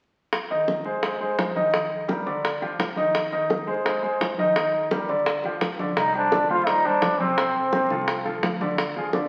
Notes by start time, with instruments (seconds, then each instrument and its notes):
0.33 high bongo, high conga
0.50 upright piano D#3 D#4 D#5, high conga
0.68 high bongo, high conga
0.85 upright piano G#3 G#4 C5, high conga
1.03 upright piano G#3 G#4 C5, high bongo, high conga
1.20 upright piano G#3 G#4 C5, high conga
1.39 high bongo, low bongo, high conga
1.55 upright piano D#3 D#4 D#5, high conga
1.73 upright piano D#3 D#4 D#5, high bongo, high conga
1.91 high conga
2.08 upright piano G3 G4 A#4, high bongo, high conga
2.26 upright piano D3 D4 D5, high bongo, high conga
2.44 high bongo, high conga
2.61 upright piano F3 F4 G4, high bongo, high conga
2.79 high bongo, low bongo, high conga
2.96 upright piano D#3 D#4 D#5, high bongo, high conga
3.14 high bongo, high conga
3.32 upright piano D#3 D#4 D#5, high conga
3.50 high bongo, high conga
3.67 upright piano G#3 G#4 C5, high conga
3.85 upright piano G#3 G#4 C5, high bongo, high conga
4.03 upright piano G#3 G#4 C5, high conga
4.21 high bongo, low bongo, high conga
4.38 upright piano D#3 D#4 D#5, high conga
4.56 upright piano D#3 D#4 D#5, high bongo, high conga
4.74 high conga
4.91 upright piano G3 G4 A#4, high bongo, high conga
5.09 upright piano D3 D4 D5, high bongo, high conga
5.26 high bongo, high conga
5.44 upright piano F3 F4 G4, high bongo, high conga
5.61 high bongo, low bongo, high conga
5.79 upright piano D3 D4 D5, high bongo, high conga
5.97 fingered electric bass C2, trombone D#4, high bongo, high conga
6.15 upright piano G3 G4 C5, trombone D4, high conga
6.32 upright piano D3 D4 D5, high bongo, high conga
6.49 fingered electric bass D#2, upright piano G3 G4 C5, trombone F4, high conga
6.67 trombone D#4, high bongo, high conga
6.85 upright piano G3 G4 C5, trombone D4, high conga
7.02 fingered electric bass F2, high bongo, low bongo, high conga
7.20 upright piano C3 C4 C5, trombone C4, high conga
7.38 upright piano C3 C4 C5, high bongo
7.55 high conga
7.73 upright piano C3 C4 C5, high bongo, high conga
7.90 fingered electric bass C2, upright piano F3 F4 A4, high bongo, high conga
8.08 high bongo, high conga
8.25 upright piano F3 F4 A4, high bongo, high conga
8.42 fingered electric bass D2, high bongo, low bongo, high conga
8.61 upright piano D3 D4 D5, high bongo, high conga
8.78 high bongo, high conga
8.96 upright piano F3 F4 G#4, high conga
9.13 upright piano D3 D4 D5, high bongo, high conga